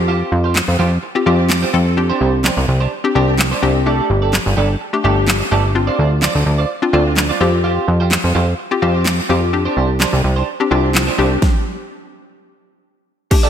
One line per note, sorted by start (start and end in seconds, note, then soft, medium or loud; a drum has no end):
0.00 0.23 F2 medium
0.00 0.60 C4 loud
0.00 0.61 F4 medium
0.00 0.61 G4 loud
0.08 0.30 F4 medium
0.08 0.30 G4 medium
0.08 0.31 C5 medium
0.32 0.61 F2 medium
0.32 muted clean electric guitar stroke soft
0.44 0.55 F4 soft
0.44 0.55 G4 medium
0.44 0.54 C5 medium
0.55 snare medium
0.55 clap loud
0.68 0.77 F2 medium
0.68 muted clean electric guitar stroke soft
0.79 0.98 F2 medium
0.79 0.93 F4 medium
0.79 0.91 G4 medium
0.79 0.90 C5 medium
0.92 muted clean electric guitar stroke soft
1.03 muted clean electric guitar stroke soft
1.15 1.23 C4 medium
1.15 1.23 F4 medium
1.15 1.23 G4 loud
1.15 muted clean electric guitar stroke soft
1.26 1.65 F2 loud
1.26 1.58 C4 loud
1.26 1.41 F4 medium
1.26 1.58 F4 medium
1.26 1.58 G4 loud
1.26 1.38 G4 medium
1.26 1.38 C5 medium
1.39 muted clean electric guitar stroke soft
1.49 muted clean electric guitar stroke soft
1.49 snare medium
1.49 clap loud
1.62 1.72 F4 medium
1.62 1.73 G4 medium
1.62 1.73 C5 medium
1.74 2.12 F2 medium
1.74 1.90 C4 medium
1.74 1.90 F4 medium
1.74 1.90 A4 loud
1.74 muted clean electric guitar stroke soft
1.86 muted clean electric guitar stroke soft
1.97 2.60 C4 medium
1.97 2.60 D4 medium
1.97 2.60 G4 loud
1.97 muted clean electric guitar stroke soft
2.10 2.19 D4 medium
2.10 2.20 G4 medium
2.10 2.21 C5 medium
2.21 2.50 C2 medium
2.21 2.32 D4 medium
2.21 2.32 G4 medium
2.21 2.32 C5 medium
2.33 muted clean electric guitar stroke medium
2.44 2.59 D4 medium
2.44 2.57 G4 medium
2.44 2.56 C5 medium
2.44 snare medium
2.44 clap loud
2.57 2.66 C2 medium
2.57 muted clean electric guitar stroke soft
2.68 2.87 C2 loud
2.68 muted clean electric guitar stroke soft
2.80 2.91 D4 medium
2.80 2.91 G4 medium
2.80 2.91 C5 medium
3.04 3.12 C4 medium
3.04 3.12 D4 medium
3.04 3.12 G4 loud
3.04 muted clean electric guitar stroke soft
3.15 3.54 C2 loud
3.15 3.47 C4 loud
3.15 3.30 D4 medium
3.15 3.47 D4 medium
3.15 3.47 G4 loud
3.15 3.28 G4 medium
3.15 3.27 C5 loud
3.28 muted clean electric guitar stroke soft
3.38 muted clean electric guitar stroke soft
3.38 snare medium
3.38 clap loud
3.51 3.61 D4 medium
3.51 3.62 G4 medium
3.51 3.62 C5 medium
3.62 4.01 C2 medium
3.62 3.79 C4 loud
3.62 3.74 D4 medium
3.62 3.79 D4 medium
3.62 3.79 G4 loud
3.62 3.74 G4 medium
3.62 3.74 C5 medium
3.75 muted clean electric guitar stroke soft
3.86 4.49 A3 medium
3.86 4.49 D4 medium
3.86 4.08 G4 medium
3.86 4.49 G4 medium
3.86 4.08 A4 medium
3.86 4.09 D5 medium
4.10 4.39 G1 medium
4.10 muted clean electric guitar stroke soft
4.22 4.33 G4 medium
4.22 4.33 A4 medium
4.22 4.32 D5 medium
4.33 snare medium
4.33 clap loud
4.46 4.55 G1 medium
4.46 muted clean electric guitar stroke soft
4.57 4.76 G1 loud
4.57 4.71 G4 medium
4.57 4.69 A4 medium
4.57 4.68 D5 medium
4.69 muted clean electric guitar stroke soft
4.81 muted clean electric guitar stroke soft
4.93 5.01 A3 medium
4.93 5.01 D4 medium
4.93 5.01 G4 loud
4.93 muted clean electric guitar stroke soft
5.04 5.43 G1 loud
5.04 5.36 A3 medium
5.04 5.36 D4 medium
5.04 5.19 G4 medium
5.04 5.36 G4 loud
5.04 5.16 A4 medium
5.04 5.16 D5 medium
5.17 muted clean electric guitar stroke soft
5.27 snare medium
5.27 clap loud
5.40 muted clean electric guitar stroke soft
5.51 5.90 G1 medium
5.51 5.68 A3 medium
5.51 5.68 D4 medium
5.51 5.66 G4 medium
5.51 5.68 G4 loud
5.51 5.64 A4 medium
5.51 5.63 D5 medium
5.64 muted clean electric guitar stroke soft
5.75 6.38 C4 medium
5.75 6.38 D4 medium
5.75 6.38 F4 loud
5.75 muted clean electric guitar stroke soft
5.87 5.97 F4 medium
5.87 5.98 C5 medium
5.87 5.99 D5 medium
5.99 6.28 D2 medium
5.99 6.10 F4 medium
5.99 6.10 C5 medium
5.99 6.10 D5 medium
6.11 muted clean electric guitar stroke medium
6.22 6.37 F4 medium
6.22 6.35 C5 medium
6.22 6.34 D5 medium
6.22 snare medium
6.22 clap loud
6.35 6.44 D2 medium
6.35 muted clean electric guitar stroke soft
6.46 6.65 D2 medium
6.46 muted clean electric guitar stroke soft
6.58 6.69 F4 medium
6.58 6.69 C5 medium
6.58 6.69 D5 medium
6.82 6.90 C4 medium
6.82 6.90 D4 medium
6.82 6.90 F4 loud
6.82 muted clean electric guitar stroke soft
6.93 7.32 D2 loud
6.93 7.25 C4 loud
6.93 7.25 D4 medium
6.93 7.08 F4 medium
6.93 7.25 F4 loud
6.93 7.05 C5 medium
6.93 7.05 D5 medium
7.06 muted clean electric guitar stroke soft
7.16 muted clean electric guitar stroke soft
7.16 snare medium
7.16 clap loud
7.29 7.39 F4 medium
7.29 7.40 C5 medium
7.29 7.41 D5 medium
7.40 7.79 F2 medium
7.40 8.16 C4 medium
7.40 7.52 F4 medium
7.40 8.17 F4 medium
7.40 8.17 G4 loud
7.40 7.52 G4 medium
7.40 7.52 C5 medium
7.53 muted clean electric guitar stroke soft
7.64 7.86 F4 medium
7.64 7.86 G4 medium
7.64 7.87 C5 medium
7.88 8.17 F2 medium
7.88 muted clean electric guitar stroke soft
8.00 8.11 F4 medium
8.00 8.11 G4 medium
8.00 8.10 C5 medium
8.11 snare medium
8.11 clap loud
8.24 8.33 F2 medium
8.24 muted clean electric guitar stroke soft
8.35 8.54 F2 medium
8.35 8.49 F4 medium
8.35 8.47 G4 medium
8.35 8.46 C5 loud
8.47 muted clean electric guitar stroke soft
8.59 muted clean electric guitar stroke soft
8.71 8.79 C4 medium
8.71 8.79 F4 medium
8.71 8.79 G4 loud
8.71 muted clean electric guitar stroke soft
8.82 9.21 F2 loud
8.82 9.14 C4 medium
8.82 8.95 F4 medium
8.82 9.14 F4 medium
8.82 9.14 G4 loud
8.82 8.94 G4 medium
8.82 8.93 C5 loud
8.95 9.05 F4 medium
8.95 9.05 G4 medium
8.95 9.05 C5 medium
9.05 snare medium
9.05 clap loud
9.18 muted clean electric guitar stroke soft
9.29 9.68 F2 medium
9.29 9.46 C4 medium
9.29 9.44 F4 medium
9.29 9.46 F4 medium
9.29 9.42 G4 medium
9.29 9.46 G4 loud
9.29 9.41 C5 medium
9.42 muted clean electric guitar stroke soft
9.53 10.16 C4 medium
9.53 10.16 D4 medium
9.53 10.16 G4 medium
9.53 muted clean electric guitar stroke soft
9.65 9.75 D4 medium
9.65 9.76 G4 medium
9.65 9.77 C5 medium
9.77 10.06 C2 medium
9.77 9.88 D4 medium
9.77 9.88 G4 medium
9.77 9.88 C5 medium
9.89 muted clean electric guitar stroke soft
10.00 10.15 D4 medium
10.00 10.12 G4 medium
10.00 10.12 C5 medium
10.00 snare medium
10.00 clap loud
10.13 10.22 C2 medium
10.13 muted clean electric guitar stroke soft
10.24 10.43 C2 loud
10.24 muted clean electric guitar stroke soft
10.36 10.47 D4 medium
10.36 10.47 G4 medium
10.36 10.47 C5 medium
10.60 10.68 C4 medium
10.60 10.68 D4 medium
10.60 10.68 G4 loud
10.60 muted clean electric guitar stroke medium
10.71 11.10 C2 loud
10.71 11.03 C4 loud
10.71 10.85 D4 medium
10.71 11.03 D4 medium
10.71 11.03 F4 loud
10.71 10.83 G4 medium
10.71 10.82 C5 medium
10.84 muted clean electric guitar stroke medium
10.94 muted clean electric guitar stroke soft
10.94 snare medium
10.94 clap loud
11.07 11.17 D4 medium
11.07 11.18 G4 medium
11.07 11.18 C5 medium
11.18 11.38 C2 medium
11.18 11.35 C4 medium
11.18 11.30 D4 medium
11.18 11.35 D4 medium
11.18 11.35 G4 loud
11.18 11.30 G4 medium
11.18 11.30 C5 medium
11.31 muted clean electric guitar stroke soft
11.42 kick loud
11.42 snare medium
13.31 13.50 A3 medium
13.31 13.50 D4 medium
13.31 13.50 G4 loud
13.31 muted clean electric guitar stroke soft
13.31 kick loud
13.31 crash loud
13.43 13.50 G4 medium
13.43 13.50 A4 medium
13.43 13.50 D5 medium